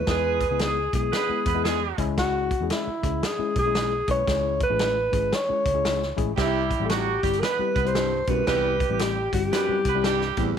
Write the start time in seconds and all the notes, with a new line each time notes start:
0.07 E2 G#3 B3 E4 G#4 B4, kick, snare, closed hi-hat
0.40 kick, closed hi-hat
0.49 C#2 G#3 B3 E4 G#4
0.59 G#4, snare, closed hi-hat
0.93 B1 G#3 B3 E4 G#4, kick, closed hi-hat
1.12 B3 B4, snare, closed hi-hat
1.29 G#3 B3 E4 G#4, muted fingered electric bass stroke
1.46 E2 B3 B4, kick, closed hi-hat
1.55 G#3 B3 E4 G#4
1.64 G#3 G#4, snare, closed hi-hat
1.98 C#2 G#3 C#4 E4 G#4, kick, closed hi-hat
2.18 F#4, kick, snare, closed hi-hat
2.51 kick, closed hi-hat
2.60 E2 G#3 C#4 E4 G#4
2.70 E4, snare, closed hi-hat
2.87 muted fingered electric bass stroke
3.03 C#2 G#3 C#4 E4 G#4, kick, closed hi-hat
3.23 G#4, snare, closed hi-hat
3.39 G#3 C#4 E4 G#4, muted fingered electric bass stroke
3.56 B1 G#4, kick, closed hi-hat
3.66 G#3 C#4 E4 G#4
3.75 snare, closed hi-hat
4.08 B1 G#3 C#4 E4 B4 C#5, kick, closed hi-hat
4.26 C#2 G#3 C#4 E4 G#4, kick, snare, closed hi-hat
4.60 B4, kick, closed hi-hat
4.70 A1 G#3 C#4 E4 G#4
4.79 snare, closed hi-hat
5.12 G#1 G#3 C#4 E4 G#4, kick, closed hi-hat
5.33 C#5, snare, closed hi-hat
5.49 G#3 C#4 E4 G#4, muted fingered electric bass stroke
5.65 C#2, kick, closed hi-hat
5.73 G#3 C#4 E4 G#4
5.85 snare, closed hi-hat
6.02 snare
6.17 A1 G#3 C#4 E4 G#4, kick, closed hi-hat
6.36 C2 C3 G3 C4 E4 G4, kick, snare, closed hi-hat
6.41 E4
6.71 kick, closed hi-hat
6.80 A1 G3 C4 E4 G4
6.85 A4
6.90 F#3 F#4 G4, snare, closed hi-hat
7.22 G1 G3 C4 E4 G4, kick, closed hi-hat
7.33 closed hi-hat
7.39 B3 A#4 B4, snare, closed hi-hat
7.44 B4
7.59 G3 C4 E4 G4, muted fingered electric bass stroke
7.74 C2 B3 B4, kick, closed hi-hat
7.84 G3 C4 E4 G4 C5, closed hi-hat
7.95 G2, snare, closed hi-hat
8.27 B1 F#2 G3 C4 E4 G4 B4, kick, closed hi-hat
8.46 C2 E2 G3 C4 E4 G4 B4, kick, snare, closed hi-hat
8.80 kick, closed hi-hat
8.89 A1 G3 C4 E4 G4
8.99 G4, snare, closed hi-hat
9.33 G1 G3 C4 E4 G4, kick, closed hi-hat
9.52 F#2 B3 B4, snare, closed hi-hat
9.68 G3 C4 E4 G4, muted fingered electric bass stroke
9.85 C2 B3 B4, kick, closed hi-hat
9.95 G3 C4 E4 G4
10.04 G2 G3 G4, snare, closed hi-hat
10.21 snare
10.37 A1 E2 G3 C4 E4 G4, kick, closed hi-hat